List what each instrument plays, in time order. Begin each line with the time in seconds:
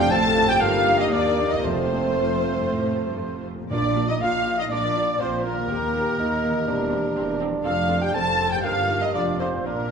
Already playing: timpani F2, harp F3 C4 F4 A4, bassoon D4
0.00 french horn section G4, oboe G5, clarinet G5, violin section G5
0.11 double bass section A1, cello section A2, viola section A3 C4, bassoon C4, french horn section A4, clarinet A5, violin section A5, oboe A5
0.36 viola section D4
0.44 harp G2
0.48 harp A#3, french horn section G4, oboe G5, clarinet G5, violin section G5
0.53 harp D#4
0.57 double bass section G1, cello section G2, viola section A#3, harp A#4, oboe F5, clarinet F5
0.61 bassoon A#3, viola section D#4, french horn section F4, violin section F5
0.98 french horn section D#4, clarinet D#5, oboe D#5, violin section D#5
1.11 cello section D#2, double bass section D#2, bassoon A#3, french horn section D4, clarinet D5, violin section D5, oboe D5
1.46 harp F2, french horn section D#4, clarinet D#5
1.51 harp C4, oboe D#5, violin section D#5
1.55 harp F4
1.60 french horn section C4, harp A4, clarinet C5, oboe C5
1.64 double bass section F1, cello section F2, timpani F2, viola section A3 F4, bassoon A3, violin section C5
2.17 cello section F2
2.56 cello section G2
2.68 cello section A2
3.08 cello section G2
3.20 cello section F2
3.53 harp A#2
3.57 harp A#3
3.62 harp F4
3.66 harp A#4
3.70 double bass section A#1, timpani A#2, cello section A#2, viola section A#3 F4, french horn section D4, oboe D5, violin section D5, clarinet D5
3.96 viola section A#3 F4
4.09 french horn section D#4, clarinet D#5, oboe D#5, violin section D#5
4.21 double bass section A#1, cello section A#2, viola section A#3 F4, french horn section F4, clarinet F5, oboe F5, violin section F5
4.47 viola section A#3 F4
4.58 french horn section D#4, clarinet D#5, oboe D#5, violin section D#5
4.69 double bass section A#1, cello section A#2, viola section A#3 F4, bassoon D4, french horn section D4, clarinet D5, oboe D5, violin section D5
4.96 viola section A#3 F4
5.19 double bass section A#1, cello section A#2, viola section A#3 F4, french horn section C4, bassoon F4, clarinet C5, violin section C5, oboe C5
5.44 french horn section A#3, viola section A#3 F4, clarinet A#4, violin section A#4, oboe A#4
5.52 harp D#3
5.57 harp A#3
5.61 harp G4
5.65 cello section D#2, harp A#4
5.70 double bass section D#2, viola section A#3 G4, bassoon G4
5.94 viola section A#3 G4
6.18 cello section D#2, double bass section D#2, viola section A#3 G4, bassoon D#4
6.43 viola section A#3 G4
6.50 harp E3
6.54 harp G3
6.59 harp G4
6.63 harp C5
6.67 double bass section E1, cello section E2, viola section C4 G4, bassoon D4
6.91 viola section C4 G4
7.16 double bass section E1, cello section E2, viola section C4 G4
7.40 viola section C4 G4
7.48 harp F3
7.52 harp A3
7.57 harp F4
7.61 double bass section F1, viola section C4, harp C5, clarinet F5
7.65 cello section F2, french horn section F4, viola section A4, violin section F5, oboe F5
7.89 viola section C4 A4
8.01 french horn section G4, clarinet G5, oboe G5, violin section G5
8.14 double bass section F1, cello section F2, viola section C4 A4, bassoon C4, french horn section A4, oboe A5, violin section A5, clarinet A5
8.39 viola section C4 A4
8.46 harp G2
8.51 harp A#3, french horn section G4, clarinet G5, violin section G5, oboe G5
8.55 harp D#4
8.60 harp D#5, clarinet F5
8.64 double bass section G1, cello section G2, bassoon A#3, viola section D#4 A#4, french horn section F4, violin section F5, oboe F5
8.89 viola section D#4 A#4
8.97 harp F2
9.01 harp A3, french horn section D#4, violin section D#5, clarinet D#5, oboe D#5
9.06 harp F4
9.10 french horn section D4, clarinet D5, violin section D5, harp D#5
9.14 double bass section F1, cello section F2, viola section D#4 A4, bassoon F4, oboe D5
9.39 french horn section C4, viola section D#4 A4, violin section C5, clarinet C5, oboe C5
9.48 harp A#2
9.52 harp A#3
9.57 harp F4
9.61 french horn section A#3, violin section A#4, harp D5
9.66 double bass section A#1, cello section A#2, viola section D4 F4, bassoon D4, violin section A#4, clarinet A#4, oboe A#4